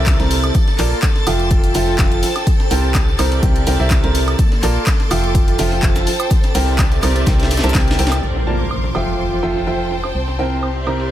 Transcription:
Already playing: fm bass C2, upright piano C3 E4 A#4 C5 E5, string section C4 G4 D5 E5, string machine A4 A6
0.06 kick, snare, clap, closed hi-hat, tambourine, shaker
0.20 fm bass C2, upright piano C3 E4 A#4 C5 A#5, snare, closed hi-hat, tambourine
0.31 open hi-hat, tambourine, shaker
0.44 closed hi-hat, tambourine, high woodblock
0.55 string section A#3, kick, closed hi-hat, tambourine, shaker
0.67 snare, tambourine
0.78 fm bass A#1, upright piano A#3 F4 A#4 D5 A5, clap, open hi-hat, tambourine, shaker
0.88 string section C6 D6, tambourine
1.02 kick, snare, clap, closed hi-hat, tambourine, high woodblock, shaker
1.16 snare, tambourine
1.27 fm bass F1, upright piano F3 F4 A4 E5 G5, string section F4, open hi-hat, tambourine, high woodblock, shaker
1.39 closed hi-hat, tambourine
1.51 kick, closed hi-hat, tambourine, shaker
1.56 string section A5
1.63 closed hi-hat, tambourine
1.74 fm bass F1, upright piano F3 F4 A4 E5 G5, open hi-hat, tambourine, shaker
1.81 string section C5 G5
1.87 snare, tambourine
1.98 fm bass F1, upright piano F3 F4 E5 G5, kick, snare, clap, closed hi-hat, tambourine, shaker
2.12 closed hi-hat
2.23 snare, open hi-hat, tambourine, shaker
2.36 snare, closed hi-hat, tambourine, high woodblock
2.47 string section C4, kick, closed hi-hat, tambourine, shaker
2.54 string section G4
2.60 snare, tambourine
2.71 fm bass C2, upright piano C3 E4 A#4 C5 G5, open hi-hat, tambourine, shaker
2.84 tambourine
2.95 kick, snare, clap, closed hi-hat, tambourine, high woodblock, shaker
2.99 string section D5
3.08 tambourine
3.19 fm bass C2, upright piano C3 E4 A#4 C5 A#5, clap, open hi-hat, tambourine, high woodblock, shaker
3.32 string section E5, closed hi-hat, tambourine
3.43 fm bass C2, upright piano C3 E4 A#4 C5 G5, kick, closed hi-hat, tambourine, shaker
3.56 closed hi-hat, tambourine
3.67 fm bass C2, upright piano C3 E4 A#4 C5 G5, snare, open hi-hat, tambourine, shaker
3.79 fm bass C2, upright piano C3 E4 A#4 C5 E5, tambourine
3.91 kick, snare, clap, closed hi-hat, tambourine, shaker
4.04 fm bass C2, upright piano C3 E4 A#4 C5 A#5, snare, closed hi-hat
4.15 open hi-hat, tambourine, shaker
4.27 closed hi-hat, tambourine, high woodblock
4.39 string section A#3, kick, closed hi-hat, tambourine, shaker
4.52 string section C6, snare, tambourine
4.63 fm bass A#1, upright piano A#3 F4 A#4 D5 A5, clap, open hi-hat, tambourine, shaker
4.72 string section D6
4.76 tambourine
4.87 kick, snare, clap, closed hi-hat, tambourine, high woodblock, shaker
5.00 snare, tambourine
5.11 fm bass F1, upright piano F3 F4 A4 E5 G5, string section F4, open hi-hat, tambourine, high woodblock, shaker
5.23 closed hi-hat, tambourine
5.35 kick, closed hi-hat, tambourine, shaker
5.48 closed hi-hat, tambourine
5.58 fm bass F1, upright piano F3 F4 A4 E5 G5, string section C5, snare, open hi-hat, tambourine, shaker
5.65 string section G5 A5
5.72 snare, tambourine
5.83 fm bass F1, upright piano F3 F4 A4 E5 G5, kick, clap, closed hi-hat, tambourine, shaker
5.96 snare, closed hi-hat, shaker
6.07 snare, open hi-hat, tambourine
6.20 closed hi-hat, tambourine, high woodblock, shaker
6.31 string section C4, kick, closed hi-hat, tambourine, shaker
6.43 string section G4, snare, closed hi-hat, tambourine
6.48 string section D5
6.55 fm bass C2, upright piano C3 E4 A#4 C5 G5, open hi-hat, tambourine, shaker
6.65 string section E5, tambourine
6.79 kick, snare, clap, closed hi-hat, tambourine, high woodblock, shaker
6.91 closed hi-hat, tambourine
7.03 fm bass C2, upright piano C3 E4 A#4 C5 A#5, clap, open hi-hat, tambourine, high woodblock, shaker
7.16 closed hi-hat, tambourine
7.26 fm bass C2, upright piano C3 E4 A#4 C5 G5, kick, snare, closed hi-hat, tambourine, shaker
7.39 snare, closed hi-hat, tambourine
7.51 snare, open hi-hat, tambourine, shaker
7.57 snare, shaker
7.59 snare
7.63 fm bass C2, upright piano C3 E4 A#4 C5 A5, snare, closed hi-hat, tambourine, shaker
7.69 snare, shaker
7.74 fm bass C2, upright piano C3 E4 A#4 C5 G5, kick, snare, clap, closed hi-hat, tambourine, shaker
7.87 snare, closed hi-hat, tambourine
7.99 fm bass C2, upright piano E4 A#4 C5 G5, snare, open hi-hat, tambourine
8.07 snare
8.12 closed hi-hat, tambourine, high woodblock, shaker
8.23 fm bass A#1, string section A#4, string machine C5 C6, impact, shaker
8.36 snare
8.47 upright piano A#3 F4 A#4 D5 A5, shaker
8.56 string section C6 D6
8.71 high woodblock, shaker
8.84 snare
8.95 fm bass F1, upright piano F3 F4 A4 E5 G5, string section F4, high woodblock, shaker
9.14 string section C5
9.19 shaker
9.43 upright piano F3 F4 A4 E5 G5, shaker
9.49 string section G5 A5
9.56 snare
9.67 upright piano F3 F4 A4 E5 G5, shaker
9.91 snare, shaker
10.04 snare, high woodblock
10.15 fm bass C2, string section C4, shaker
10.28 snare
10.39 upright piano C3 E4 A#4 C5 G5, shaker
10.44 string section G4
10.63 high woodblock, shaker
10.79 string section D5 E5
10.87 upright piano C3 E4 A#4 C5 A#5, high woodblock, shaker
11.00 closed hi-hat

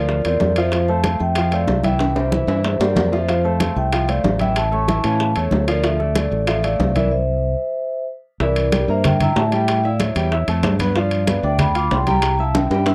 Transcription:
Already playing: fingered electric bass D2, grand piano F3 F4 F5, vibraphone A#4 D5
0.09 high bongo, high conga
0.24 fingered electric bass E2, grand piano C4 F4 C5, vibraphone A#4 D5, high bongo, high conga, high timbale
0.40 fingered electric bass F2, high bongo, low bongo, high conga, low timbale
0.56 grand piano F3 F4 F5, vibraphone C5 E5, high timbale
0.72 grand piano F3 F4 F5, vibraphone C5 F5, high bongo, high conga, high timbale
0.88 grand piano A3 A4 C5, vibraphone F5 A5, high bongo, high conga
1.04 grand piano A3 A4 C5, high bongo, high conga, high timbale, low timbale
1.20 fingered electric bass F2, vibraphone E5 G5, high bongo, high conga
1.35 grand piano F3 F4 F5, high bongo, high conga, high timbale
1.51 grand piano A3 A4 C5, vibraphone D5 F5, high bongo, high conga, high timbale
1.68 fingered electric bass C2, high bongo, low bongo, high conga, low timbale
1.84 grand piano E3 E4 E5, vibraphone E5 G5, high conga, high timbale
1.99 high bongo, high conga, high timbale
2.15 grand piano G3 G4 C5, vibraphone C5 E5, high bongo, high conga, high timbale
2.31 grand piano E3 E4 E5, high bongo, high conga
2.47 fingered electric bass G2, grand piano E3 E4 E5, high bongo, high timbale
2.64 high bongo, high conga, low timbale
2.80 fingered electric bass G2, grand piano G3 G4 C5, vibraphone A#4 D5, high bongo, high conga, low timbale
2.95 fingered electric bass F2, high bongo, low bongo, high conga, low timbale
3.12 grand piano F3 F4 F5, vibraphone C5 E5, high conga, low timbale
3.28 grand piano F3 F4 F5, vibraphone C5 F5, high bongo, high conga, high timbale
3.44 grand piano A3 A4 C5, vibraphone F5 A5, high bongo, high conga
3.60 grand piano A3 A4 C5, high bongo, high conga, high timbale, low timbale
3.76 fingered electric bass C2, vibraphone E5 G5, high bongo, high conga
3.93 grand piano F3 F4 F5, high bongo, high conga, high timbale
4.08 grand piano A3 A4 C5, vibraphone D5 F5, high bongo, high conga, high timbale
4.24 fingered electric bass A1, high bongo, low bongo, high conga, low timbale
4.39 grand piano E3 E4 E5, vibraphone E5 G5, high conga, high timbale
4.56 vibraphone E5 A5, high bongo, high conga, high timbale
4.71 grand piano A3 A4 C#5, vibraphone A5 C#6, high bongo, high conga
4.88 grand piano E3 E4 E5, high bongo, high conga, high timbale, low timbale
5.04 fingered electric bass A2, grand piano E3 C#4 C#5, vibraphone F5 A5, high bongo, high timbale
5.20 high bongo, high conga
5.36 fingered electric bass E2, grand piano A3 A4 C#5, vibraphone A4 C#5, high bongo, high conga, high timbale
5.51 fingered electric bass D2, high bongo, low bongo, high conga, low timbale
5.68 grand piano F3 F4 F5, vibraphone A#4 D5, high timbale
5.83 grand piano F3 F4 F5, vibraphone A4 E5, high bongo, high conga, high timbale
5.99 grand piano A3 A4 D5, high bongo, high conga
6.15 grand piano A3 A4 D5, vibraphone A4 D5, high bongo, high conga, high timbale, low timbale
6.31 fingered electric bass A1, high bongo, high conga
6.47 grand piano F3 F4 F5, vibraphone A4 E5, high bongo, high conga, high timbale
6.63 grand piano A3 A4 D5, vibraphone D5 F5, high bongo, high conga, high timbale
6.79 fingered electric bass C2, high bongo, low bongo, high conga, low timbale
6.95 grand piano E3 E4 E5, vibraphone A#4 D5, high conga, high timbale
7.11 vibraphone C5 E5
8.40 fingered electric bass C2, grand piano E3 E4 E5, vibraphone A#4 D5, high bongo, high conga
8.56 high conga, high timbale
8.72 grand piano G3 G4 G5, high bongo, high conga, high timbale, low timbale
8.88 fingered electric bass G2, grand piano A#3 A#4 A#5, vibraphone C5 E5
9.04 vibraphone E5 G5, high bongo, high conga, low conga, high timbale
9.21 grand piano E4 E5 E6, vibraphone G5 A#5, high conga, low conga, high timbale
9.36 fingered electric bass A2, vibraphone E5 A5, high bongo, low bongo, high conga, low timbale
9.52 grand piano G3 G4 G5, vibraphone E5 G5, high timbale
9.68 high bongo, high conga, high timbale
9.84 grand piano E4 E5 E6, vibraphone D5 F5, high conga
10.00 vibraphone C#5 E5, high bongo, high conga, high timbale, low timbale
10.15 fingered electric bass E2, grand piano G3 G4 G5, high bongo, high conga, high timbale
10.32 grand piano E4 E5 E6, high bongo, high conga
10.48 fingered electric bass F2, grand piano A3 A4 A5, high bongo, high conga, high timbale
10.63 fingered electric bass G2, high bongo, low bongo, high conga, high timbale, low timbale
10.79 grand piano B3 B4 B5, high bongo, high conga, high timbale
10.95 grand piano F3 F4 F5, vibraphone D5 F5, high bongo, high conga
11.11 high conga, high timbale
11.27 grand piano B3 B4 B5, high bongo, high conga, high timbale, low timbale
11.43 fingered electric bass D2, grand piano D4 D5 D6, vibraphone E5 G5
11.59 vibraphone G5 B5, high bongo, high conga, low conga, high timbale
11.75 grand piano F4 F5 F6, vibraphone B5 D6, high conga, high timbale
11.91 fingered electric bass C2, vibraphone G5 C6, high bongo, low bongo, high conga, low timbale
12.07 grand piano G3 G4 G5, vibraphone G5 A#5, high conga, high timbale
12.22 high bongo, high conga, high timbale
12.39 grand piano E4 E5 E6, vibraphone F5 A5, high conga
12.55 vibraphone E5 G5, high bongo, high conga, high timbale
12.70 fingered electric bass G2, grand piano G3 G4 G5, high bongo, high timbale
12.86 grand piano E4 E5 E6, high bongo, high conga, high timbale

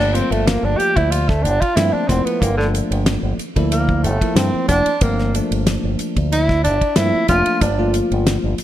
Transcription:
Already playing: fingered electric bass G1
0.00 tenor saxophone D4
0.14 tine electric piano F3 A3 A#3 F4, tenor saxophone C4, hi-hat pedal, ride
0.31 fingered electric bass G1, tenor saxophone A3, ride
0.46 tenor saxophone A#3, snare, hi-hat pedal, ride
0.63 fingered electric bass G1, tenor saxophone D4
0.78 tenor saxophone G4, muted fingered electric bass stroke, hi-hat pedal, ride
0.96 fingered electric bass D2, tenor saxophone E4, kick, ride
1.11 tenor saxophone F4, hi-hat pedal, ride
1.29 tenor saxophone A3, kick, snare
1.43 fingered electric bass G1, tenor saxophone D4, hi-hat pedal, ride
1.61 tenor saxophone F4, kick, ride
1.75 fingered electric bass G2, tine electric piano F3 A3 A#3 C4, tenor saxophone E4, snare, hi-hat pedal, ride
1.93 tenor saxophone D4, muted fingered electric bass stroke
2.08 fingered electric bass F1, tine electric piano F3 A3 A#3 E4, tenor saxophone C4, kick, snare, hi-hat pedal, ride
2.25 tenor saxophone B3, ride
2.41 fingered electric bass G1, tenor saxophone A#3, kick, hi-hat pedal, ride
2.58 tenor saxophone D3, tine electric piano F3 A3 A#3 D4, snare
2.75 hi-hat pedal, ride
2.91 fingered electric bass G1, ride
3.06 snare, hi-hat pedal, ride
3.23 fingered electric bass G1
3.38 muted fingered electric bass stroke, hi-hat pedal, ride
3.56 fingered electric bass D2, tine electric piano F3 A#3 E4 A4, kick, ride
3.72 tenor saxophone A#3, hi-hat pedal, ride
3.89 kick
4.03 fingered electric bass G1, tenor saxophone A3, hi-hat pedal, ride
4.21 tine electric piano F3 A3 A#3 E4, kick, ride
4.35 fingered electric bass G2, tenor saxophone C4, snare, hi-hat pedal, ride
4.54 muted fingered electric bass stroke
4.68 fingered electric bass F1, tenor saxophone D4, kick, snare, hi-hat pedal, ride
4.86 muted fingered electric bass stroke, ride
5.01 fingered electric bass G1, tine electric piano F3 A3 A#3 C4, tenor saxophone A#3, kick, hi-hat pedal, ride
5.19 snare
5.34 tine electric piano F3 A3 A#3 D4, hi-hat pedal, ride
5.51 fingered electric bass G1, ride
5.67 snare, hi-hat pedal, ride
5.84 fingered electric bass G1
5.99 muted fingered electric bass stroke, hi-hat pedal, ride
6.17 fingered electric bass D2, kick, ride
6.32 tenor saxophone E4, hi-hat pedal, ride
6.49 kick, snare
6.64 fingered electric bass G1, tenor saxophone D4, hi-hat pedal, ride
6.81 kick, ride
6.96 fingered electric bass G2, tine electric piano F3 A3 A#3 C4, tenor saxophone E4, snare, hi-hat pedal, ride
7.14 muted fingered electric bass stroke
7.28 fingered electric bass F1, tine electric piano F3 A3 A#3 D4, tenor saxophone F4, kick, snare, hi-hat pedal, ride
7.46 ride
7.61 fingered electric bass G1, tenor saxophone D4, kick, hi-hat pedal, ride
7.78 tine electric piano F3 A3 A#3 F4
7.94 hi-hat pedal, ride
8.11 fingered electric bass G1, ride
8.27 snare, hi-hat pedal, ride
8.44 fingered electric bass G1
8.58 hi-hat pedal, ride

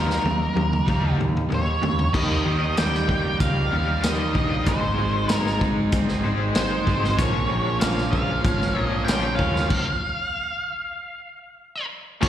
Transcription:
Already playing: picked electric bass D#2, overdriven electric guitar D#3 G3, steel-string acoustic guitar A#3 D#4 G4, lead electric guitar A#4
0.10 snare
0.22 picked electric bass D#2, steel-string acoustic guitar D#3 A#3 D#4 G4, high tom
0.53 picked electric bass D#2, overdriven electric guitar D#3 A#3, steel-string acoustic guitar D#4 G4, high tom
0.59 steel-string acoustic guitar A#3
0.73 mid tom
0.88 picked electric bass D#2, steel-string acoustic guitar D#3 A#3 D#4 G4, overdriven electric guitar G3, kick, mid tom
1.17 picked electric bass D#2, overdriven electric guitar D#3, steel-string acoustic guitar A#3 D#4 G4, mid tom
1.37 mid tom
1.50 picked electric bass D#2, steel-string acoustic guitar D#3 A#3 D#4 G4, mid tom
1.54 lead electric guitar C#5
1.81 picked electric bass D#2, overdriven electric guitar D#3 A#3, steel-string acoustic guitar D#4 G4, floor tom
1.86 steel-string acoustic guitar A#3
1.99 floor tom
2.14 picked electric bass D#2, steel-string acoustic guitar D#3 A#3 D#4 G4, overdriven electric guitar G3 A#4, lead electric guitar D#5, kick, crash
2.44 picked electric bass D#2, overdriven electric guitar D#3, steel-string acoustic guitar D#4 G4
2.50 steel-string acoustic guitar A#3
2.76 picked electric bass D#2, steel-string acoustic guitar D#3 A#3 D#4 G4, overdriven electric guitar G3, lead electric guitar G5, snare, closed hi-hat
2.94 snare
3.09 steel-string acoustic guitar A#3 D#4 G4, kick
3.40 picked electric bass C#2, steel-string acoustic guitar D#3 A#3, lead electric guitar F5, kick, closed hi-hat
3.45 steel-string acoustic guitar D#4 G4
3.72 picked electric bass D#2, overdriven electric guitar D#3 G3 A#4, steel-string acoustic guitar D#4 G4
3.76 steel-string acoustic guitar A#3
4.03 picked electric bass D#2, steel-string acoustic guitar D#3 A#3 D#4 G4, overdriven electric guitar G3 A#4, lead electric guitar D#5, snare, closed hi-hat
4.35 picked electric bass A#1, overdriven electric guitar A#3, steel-string acoustic guitar D#4 G4, kick
4.39 steel-string acoustic guitar A#3
4.66 picked electric bass G#1, steel-string acoustic guitar G#2 D#3 G#3 C4 D#4 G#4, lead electric guitar C5, overdriven electric guitar C5, kick, closed hi-hat
4.99 picked electric bass G#1, overdriven electric guitar D#3, steel-string acoustic guitar G#3 C4 D#4 G#4
5.28 picked electric bass G#1, steel-string acoustic guitar G#2 D#3 G#3 C4 D#4 G#4, snare, closed hi-hat
5.33 lead electric guitar A#4
5.46 snare
5.61 steel-string acoustic guitar G#3 C4 D#4 G#4, kick
5.92 picked electric bass G#1, steel-string acoustic guitar G#3 C4 D#4 G#4, kick, closed hi-hat
6.08 snare
6.24 picked electric bass G#1, steel-string acoustic guitar G#3 C4 D#4 G#4, overdriven electric guitar C5
6.55 picked electric bass G#1, steel-string acoustic guitar G#2 D#3 G#3 C4 D#4 G#4, lead electric guitar C5, overdriven electric guitar C5, snare, closed hi-hat
6.87 picked electric bass G#1, steel-string acoustic guitar G#3 C4 D#4 G#4, kick
7.04 snare
7.18 picked electric bass A#1, steel-string acoustic guitar A#2 F3 C#4 F4 A#4, overdriven electric guitar A#3 C#5, lead electric guitar C#5, kick, closed hi-hat
7.49 picked electric bass A#1, overdriven electric guitar F3, steel-string acoustic guitar F4 A#4
7.54 steel-string acoustic guitar C#4
7.80 picked electric bass A#1, steel-string acoustic guitar A#2 F3 C#4, overdriven electric guitar A#3, lead electric guitar F5, snare, closed hi-hat
7.85 steel-string acoustic guitar F4 A#4
7.98 snare
8.12 steel-string acoustic guitar F4 A#4, lead electric guitar F5, kick
8.17 steel-string acoustic guitar C#4
8.44 picked electric bass G#1, steel-string acoustic guitar F3 C#4 F4 A#4, kick, closed hi-hat
8.61 snare
8.75 picked electric bass A#1, overdriven electric guitar F3 A#3 C#5, steel-string acoustic guitar F4 A#4
8.79 overdriven electric guitar A#2, steel-string acoustic guitar C#4, lead electric guitar D#5
9.05 picked electric bass A#1, steel-string acoustic guitar A#2 F3 C#4, overdriven electric guitar A#3, lead electric guitar G5, closed hi-hat
9.09 steel-string acoustic guitar F4 A#4, overdriven electric guitar C#5, snare
9.36 picked electric bass D#2, steel-string acoustic guitar A#4, lead electric guitar F5, kick
9.40 steel-string acoustic guitar C#4 F4
9.56 snare
9.70 kick, crash
12.22 picked electric bass A#1, steel-string acoustic guitar A#2 F3 C#4 F4 A#4, overdriven electric guitar A#3, lead electric guitar C#5, kick, crash

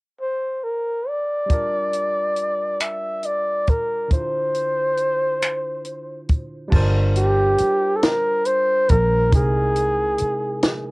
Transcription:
0.21 flugelhorn C5
0.64 flugelhorn A#4
1.08 flugelhorn D5
1.46 tine electric piano G3 D4 F4, kick, closed hi-hat
1.52 tine electric piano A#4 A5
1.93 closed hi-hat
2.36 closed hi-hat
2.80 flugelhorn E5, finger snap, closed hi-hat
3.23 flugelhorn D5, closed hi-hat
3.67 flugelhorn A#4, kick, closed hi-hat
4.08 tine electric piano D3 D4 E4, kick, closed hi-hat
4.13 tine electric piano F4 C5, flugelhorn C5
4.54 closed hi-hat
4.97 closed hi-hat
5.42 finger snap, closed hi-hat
5.85 closed hi-hat
6.29 kick, closed hi-hat
6.68 tine electric piano G3 D4 F4
6.72 fingered electric bass G1, tine electric piano A#4 C5 A5, kick, crash
7.16 flugelhorn G4, closed hi-hat
7.58 muted fingered electric bass stroke, closed hi-hat
7.96 flugelhorn A4
8.03 flugelhorn A#4, snare, closed hi-hat
8.45 flugelhorn C5, closed hi-hat
8.89 fingered electric bass A#1, flugelhorn A#4, kick, closed hi-hat
9.30 fingered electric bass C2, tine electric piano C3 G#3 D#4, kick, closed hi-hat
9.35 tine electric piano E4 A#4, flugelhorn G#4
9.76 closed hi-hat
10.18 muted fingered electric bass stroke, closed hi-hat
10.63 snare, closed hi-hat

